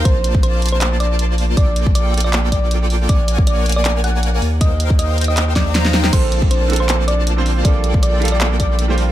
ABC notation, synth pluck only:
X:1
M:4/4
L:1/16
Q:"Swing 16ths" 1/4=158
K:Bb
V:1 name="Synth pluck"
c2 z2 c2 z c2 z d2 z4 | d2 z2 d2 z d2 z d2 z4 | d2 z2 d2 z d2 z ^f2 z4 | e2 z2 e2 z e2 z d2 z4 |
c2 z2 c2 z c2 z d2 z4 | d2 z2 d2 z d2 z d2 z4 |]